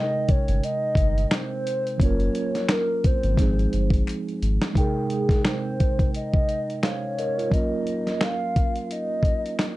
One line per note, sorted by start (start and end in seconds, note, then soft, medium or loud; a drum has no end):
0.00 1.95 C3 medium
0.00 1.94 G#3 medium
0.00 1.95 D#4 medium
0.00 1.97 A#4 medium
0.00 0.32 D#5 loud
0.00 1.96 G5 medium
0.28 0.66 C#5 loud
0.28 kick loud
0.28 closed hi-hat medium
0.48 0.60 G1 loud
0.48 closed hi-hat medium
0.63 1.36 D#5 loud
0.63 closed hi-hat medium
0.95 1.25 G1 loud
0.95 kick medium
0.95 closed hi-hat medium
1.18 closed hi-hat soft
1.31 2.01 C5 loud
1.31 finger snap medium
1.31 snare medium
1.31 closed hi-hat medium
1.67 closed hi-hat medium
1.87 closed hi-hat soft
1.98 2.29 F#1 loud
1.98 3.34 F#3 medium
1.98 3.35 A#3 medium
1.98 3.36 C#4 medium
1.98 kick loud
1.98 closed hi-hat medium
2.02 3.37 F4 medium
2.02 3.38 A#4 medium
2.02 2.73 C#5 loud
2.20 closed hi-hat soft
2.35 closed hi-hat medium
2.55 snare soft
2.55 closed hi-hat medium
2.69 3.08 A#4 loud
2.69 finger snap medium
2.69 snare loud
2.69 closed hi-hat medium
3.04 4.43 C5 loud
3.04 kick medium
3.04 closed hi-hat medium
3.23 3.36 G#1 medium
3.23 closed hi-hat soft
3.35 3.67 G#1 loud
3.35 4.71 F3 medium
3.35 4.71 G#3 medium
3.35 4.73 C4 medium
3.35 kick medium
3.35 snare soft
3.35 closed hi-hat medium
3.40 4.74 D#4 medium
3.40 4.75 G#4 medium
3.59 closed hi-hat soft
3.73 4.02 G1 medium
3.73 closed hi-hat medium
3.90 kick medium
3.90 closed hi-hat medium
4.07 finger snap medium
4.07 closed hi-hat medium
4.29 closed hi-hat soft
4.42 4.59 G#1 medium
4.42 closed hi-hat medium
4.62 snare medium
4.62 closed hi-hat soft
4.73 7.47 C3 medium
4.73 7.46 G#3 medium
4.73 7.48 D#4 medium
4.73 kick loud
4.77 5.42 G#4 medium
4.77 6.81 A#4 medium
4.77 6.80 G5 medium
4.77 closed hi-hat medium
5.10 closed hi-hat medium
5.29 kick medium
5.29 snare soft
5.29 closed hi-hat soft
5.45 6.10 C5 loud
5.45 finger snap medium
5.45 snare loud
5.45 closed hi-hat medium
5.80 kick medium
5.80 closed hi-hat medium
5.99 kick medium
5.99 closed hi-hat soft
6.14 6.80 D#5 loud
6.14 closed hi-hat medium
6.34 kick medium
6.49 closed hi-hat medium
6.70 closed hi-hat soft
6.83 7.16 C5 medium
6.83 7.54 C#5 loud
6.83 7.16 F5 medium
6.83 finger snap medium
6.83 snare medium
6.83 closed hi-hat medium
7.19 7.37 A#4 medium
7.19 7.37 D#5 medium
7.19 closed hi-hat medium
7.38 7.54 F4 soft
7.38 7.56 A#4 medium
7.38 closed hi-hat soft
7.50 9.77 F#3 medium
7.50 9.77 A#3 medium
7.50 9.77 C#4 medium
7.50 8.25 D#5 loud
7.50 kick loud
7.50 closed hi-hat medium
7.55 9.77 F4 medium
7.55 9.77 A#4 medium
7.87 closed hi-hat medium
8.07 snare soft
8.07 closed hi-hat soft
8.21 8.93 F5 loud
8.21 finger snap medium
8.21 snare loud
8.21 closed hi-hat medium
8.56 kick medium
8.56 closed hi-hat medium
8.76 closed hi-hat soft
8.91 9.77 D#5 loud
8.91 closed hi-hat medium
9.23 kick medium
9.23 closed hi-hat medium
9.46 closed hi-hat soft
9.59 finger snap medium
9.59 snare medium
9.59 closed hi-hat medium